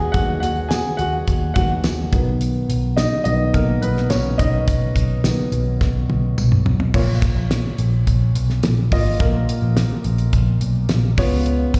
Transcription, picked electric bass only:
0, 0, Header, 1, 2, 480
1, 0, Start_track
1, 0, Tempo, 566038
1, 121, Time_signature, 4, 2, 24, 8
1, 10006, End_track
2, 0, Start_track
2, 0, Title_t, "Picked electric bass"
2, 0, Program_c, 0, 34
2, 120, Note_on_c, 0, 39, 97
2, 318, Note_off_c, 0, 39, 0
2, 359, Note_on_c, 0, 39, 77
2, 656, Note_off_c, 0, 39, 0
2, 841, Note_on_c, 0, 39, 83
2, 1039, Note_off_c, 0, 39, 0
2, 1082, Note_on_c, 0, 39, 105
2, 1280, Note_off_c, 0, 39, 0
2, 1321, Note_on_c, 0, 39, 86
2, 1519, Note_off_c, 0, 39, 0
2, 1563, Note_on_c, 0, 39, 83
2, 1760, Note_off_c, 0, 39, 0
2, 1803, Note_on_c, 0, 35, 77
2, 2198, Note_off_c, 0, 35, 0
2, 2283, Note_on_c, 0, 35, 87
2, 2579, Note_off_c, 0, 35, 0
2, 2760, Note_on_c, 0, 35, 85
2, 2959, Note_off_c, 0, 35, 0
2, 3004, Note_on_c, 0, 35, 87
2, 3202, Note_off_c, 0, 35, 0
2, 3243, Note_on_c, 0, 35, 98
2, 3441, Note_off_c, 0, 35, 0
2, 3482, Note_on_c, 0, 35, 93
2, 3680, Note_off_c, 0, 35, 0
2, 3724, Note_on_c, 0, 35, 89
2, 3922, Note_off_c, 0, 35, 0
2, 3965, Note_on_c, 0, 35, 92
2, 4162, Note_off_c, 0, 35, 0
2, 4202, Note_on_c, 0, 35, 75
2, 4499, Note_off_c, 0, 35, 0
2, 4682, Note_on_c, 0, 35, 79
2, 4881, Note_off_c, 0, 35, 0
2, 4927, Note_on_c, 0, 35, 95
2, 5123, Note_off_c, 0, 35, 0
2, 5165, Note_on_c, 0, 35, 87
2, 5362, Note_off_c, 0, 35, 0
2, 5406, Note_on_c, 0, 35, 83
2, 5602, Note_off_c, 0, 35, 0
2, 5643, Note_on_c, 0, 35, 73
2, 5841, Note_off_c, 0, 35, 0
2, 5885, Note_on_c, 0, 34, 87
2, 6082, Note_off_c, 0, 34, 0
2, 6240, Note_on_c, 0, 34, 90
2, 6439, Note_off_c, 0, 34, 0
2, 6603, Note_on_c, 0, 34, 88
2, 6800, Note_off_c, 0, 34, 0
2, 6845, Note_on_c, 0, 34, 94
2, 7041, Note_off_c, 0, 34, 0
2, 7083, Note_on_c, 0, 35, 83
2, 7280, Note_off_c, 0, 35, 0
2, 7321, Note_on_c, 0, 34, 86
2, 7519, Note_off_c, 0, 34, 0
2, 7562, Note_on_c, 0, 32, 78
2, 7759, Note_off_c, 0, 32, 0
2, 7802, Note_on_c, 0, 34, 100
2, 7999, Note_off_c, 0, 34, 0
2, 8158, Note_on_c, 0, 34, 86
2, 8356, Note_off_c, 0, 34, 0
2, 8520, Note_on_c, 0, 34, 87
2, 8717, Note_off_c, 0, 34, 0
2, 8760, Note_on_c, 0, 34, 98
2, 8957, Note_off_c, 0, 34, 0
2, 8998, Note_on_c, 0, 35, 96
2, 9196, Note_off_c, 0, 35, 0
2, 9236, Note_on_c, 0, 34, 88
2, 9434, Note_off_c, 0, 34, 0
2, 9478, Note_on_c, 0, 37, 94
2, 9871, Note_off_c, 0, 37, 0
2, 10006, End_track
0, 0, End_of_file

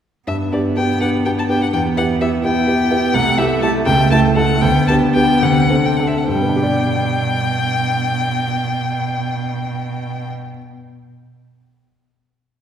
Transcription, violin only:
0, 0, Header, 1, 2, 480
1, 0, Start_track
1, 0, Key_signature, 1, "major"
1, 0, Tempo, 486224
1, 278, Time_signature, 6, 3, 24, 8
1, 1716, Tempo, 471328
1, 3636, Tempo, 497925
1, 4596, Tempo, 551978
1, 11546, End_track
2, 0, Start_track
2, 0, Title_t, "Violin"
2, 0, Program_c, 0, 40
2, 271, Note_on_c, 0, 76, 68
2, 350, Note_off_c, 0, 76, 0
2, 519, Note_on_c, 0, 74, 53
2, 598, Note_off_c, 0, 74, 0
2, 760, Note_on_c, 0, 79, 72
2, 994, Note_off_c, 0, 79, 0
2, 1000, Note_on_c, 0, 78, 64
2, 1079, Note_off_c, 0, 78, 0
2, 1239, Note_on_c, 0, 79, 69
2, 1287, Note_off_c, 0, 79, 0
2, 1369, Note_on_c, 0, 81, 69
2, 1415, Note_off_c, 0, 81, 0
2, 1480, Note_on_c, 0, 79, 73
2, 1596, Note_off_c, 0, 79, 0
2, 1604, Note_on_c, 0, 78, 65
2, 1650, Note_off_c, 0, 78, 0
2, 1711, Note_on_c, 0, 79, 77
2, 1792, Note_off_c, 0, 79, 0
2, 1957, Note_on_c, 0, 78, 78
2, 2038, Note_off_c, 0, 78, 0
2, 2198, Note_on_c, 0, 76, 74
2, 2279, Note_off_c, 0, 76, 0
2, 2433, Note_on_c, 0, 79, 87
2, 3148, Note_on_c, 0, 78, 105
2, 3163, Note_off_c, 0, 79, 0
2, 3388, Note_on_c, 0, 76, 85
2, 3403, Note_off_c, 0, 78, 0
2, 3630, Note_off_c, 0, 76, 0
2, 3636, Note_on_c, 0, 81, 88
2, 3713, Note_off_c, 0, 81, 0
2, 3863, Note_on_c, 0, 79, 100
2, 4098, Note_off_c, 0, 79, 0
2, 4106, Note_on_c, 0, 81, 101
2, 4183, Note_off_c, 0, 81, 0
2, 4347, Note_on_c, 0, 78, 93
2, 4590, Note_on_c, 0, 79, 95
2, 4604, Note_off_c, 0, 78, 0
2, 4814, Note_off_c, 0, 79, 0
2, 4819, Note_on_c, 0, 81, 93
2, 4889, Note_off_c, 0, 81, 0
2, 5056, Note_on_c, 0, 79, 91
2, 5299, Note_on_c, 0, 78, 87
2, 5312, Note_off_c, 0, 79, 0
2, 5671, Note_on_c, 0, 79, 72
2, 5684, Note_off_c, 0, 78, 0
2, 5768, Note_on_c, 0, 78, 71
2, 5781, Note_off_c, 0, 79, 0
2, 5860, Note_on_c, 0, 76, 59
2, 5874, Note_off_c, 0, 78, 0
2, 5954, Note_on_c, 0, 78, 57
2, 5967, Note_off_c, 0, 76, 0
2, 6041, Note_off_c, 0, 78, 0
2, 6046, Note_on_c, 0, 79, 84
2, 9529, Note_off_c, 0, 79, 0
2, 11546, End_track
0, 0, End_of_file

